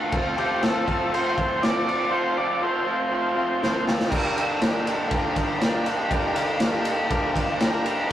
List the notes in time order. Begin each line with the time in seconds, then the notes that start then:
Already playing: D3 A3 D4 F4
0.12 F3 A3 C4 F4 A4, kick, crash
0.36 F3 A3 C4 F4 G4, crash
0.61 F3 A3 C4 F4 A4, snare, crash
0.86 F3 A3 C4 F4, kick, crash
1.11 F3 A3 C4 F4 A4 C5, crash
1.35 F3 A3 C4 F4, kick, crash
1.60 F3 A3 C4 F4 D5, snare, crash
1.64 A4
1.86 F3 A3 C4 F4, crash
2.09 F3 A3 C4 F4 A4 C5
2.37 F3 A3 C4 F4 D5
2.62 F3 A3 C4 F4 A4 C5
2.86 F3 A3 C4 F4
3.10 F3 A3 C4 F4 A4
3.15 C5
3.36 F3 A3 C4 F4
3.60 F3 A3 C4 F4 A4, snare
3.86 F3 A3 C4 F4, snare
4.00 snare
4.09 G2 D3 G3 A#3 D4 G4 A#4, kick, crash
4.35 G3 A#3 D4 G4, ride
4.60 G3 A#3 D4 G4 A#4, snare, ride
4.87 ride
5.07 G2 D3 G3 A#3 D4 G4, ride
5.11 D4 G4 A#4, kick
5.33 G3 A#3 D4 G4, kick, ride
5.58 G3 A#3 D4 G4, ride
5.62 D4 G4 A#4, snare
5.83 G3 A#3 D4 G4, ride
6.09 G2 D3 G3 A#3 D4 G4 A#4, kick, ride
6.35 G3 A#3 D4 G4, ride
6.60 G3 A#3 D4 G4 A#4, snare, ride
6.85 ride
7.08 G2 D3 G3 A#3 D4 G4 A#4, kick, ride
7.33 G3 A#3 D4 G4, kick, ride
7.39 D5
7.59 G3 A#3 D4 G4 A#4 A#5, snare, ride
7.84 G3 A#3 D4 G4, ride